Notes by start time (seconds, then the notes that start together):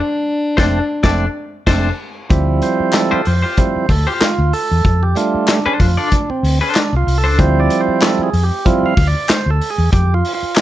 Already playing: D4
0.57 F1 A3 C4 D4 A4 C5, kick, snare
1.03 F1 A3 C4 D4 A4 D5, kick, snare
1.67 F1 A3 C4 D4 A4 C5, kick, snare, crash
2.30 D2 F3 G3 C4 E4, kick, closed hi-hat
2.62 C5, closed hi-hat
2.80 muted fingered electric bass stroke
2.93 A4, snare, clap, closed hi-hat
3.11 F4 G4 C5, muted fingered electric bass stroke
3.25 F2 C5, open hi-hat
3.42 F4 G4 C5
3.57 F3 G3 C4 E4, kick, closed hi-hat
3.76 muted fingered electric bass stroke
3.89 D2 A4, kick, open hi-hat
4.07 F4 G4 C5
4.21 F4, muted fingered electric bass stroke, snare, clap, closed hi-hat
4.38 D2
4.53 A4, open hi-hat
4.71 E2
4.85 F2, kick, closed hi-hat
5.03 G4
5.15 G3 A3 D4 F4, closed hi-hat
5.34 muted fingered electric bass stroke
5.48 D4, snare, clap, closed hi-hat
5.66 D4 A4 C5, muted fingered electric bass stroke
5.80 F2 F4, kick, open hi-hat
5.97 D4 A4 D5
6.12 D4, kick, closed hi-hat
6.30 C4, muted fingered electric bass stroke
6.43 D2, open hi-hat
6.61 D4 A4 C5
6.75 D4, snare, clap, closed hi-hat
6.93 C2 F4
7.07 C2, open hi-hat
7.18 A4
7.24 C#2 D4 A4 C5
7.38 D2 F3 G3 C4 E4 C5, kick, closed hi-hat
7.60 D5
7.70 closed hi-hat
7.81 C5
7.88 muted fingered electric bass stroke
8.02 A4, snare, clap, closed hi-hat
8.19 muted fingered electric bass stroke
8.23 G#4
8.33 F2, open hi-hat
8.44 G4
8.65 F3 G3 C4 E4 F4, kick, closed hi-hat
8.83 F5, muted fingered electric bass stroke
8.97 D2, kick, open hi-hat
9.07 D5
9.28 C5, muted fingered electric bass stroke, snare, clap, closed hi-hat
9.46 D2
9.50 A4
9.61 open hi-hat
9.70 G#4
9.78 E2
9.92 F2 G4, kick, closed hi-hat
10.14 F4
10.25 open hi-hat
10.35 F4
10.43 muted fingered electric bass stroke
10.56 snare, clap, closed hi-hat